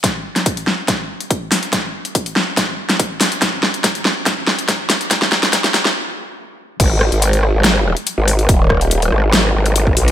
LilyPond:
<<
  \new Staff \with { instrumentName = "Wobble bass" } { \clef bass \time 4/4 \key gis \minor \tempo 4 = 142 r1 | r1 | r1 | r1 |
gis,,8. gis,,4 gis,,4 r8 gis,,8. | dis,,4. gis,,4 gis,,4 b,,8 | }
  \new DrumStaff \with { instrumentName = "Drums" } \drummode { \time 4/4 <hh bd sn>8. <hh sn>16 <hh bd>16 hh16 sn8 <hh bd sn>8. hh16 <hh bd>8 <hho sn>16 hh16 | <hh bd sn>8. hh16 <hh bd>16 hh16 sn8 <hh bd sn>8. <hh sn>16 <hh bd>8 <hho sn>16 hh16 | <hh bd sn>8 sn16 hh16 <hh bd sn>16 hh16 sn8 <hh bd sn>8 sn16 hh16 <hh bd sn>8 <hho sn>16 hh16 | <hh bd sn>16 sn16 sn16 <hh sn>16 <hh bd sn>16 <hh sn>16 <hho sn>16 sn16 r4 r4 |
<cymc hh bd>8 ss16 hh16 hh16 hh16 ss8 <hh sn>8. hh16 hh8 hho16 hh16 | <hh bd>8 <bd ss>16 hh16 hh16 hh16 ss8 <hh sn>8. hh16 hh16 bd16 hho16 hh16 | }
>>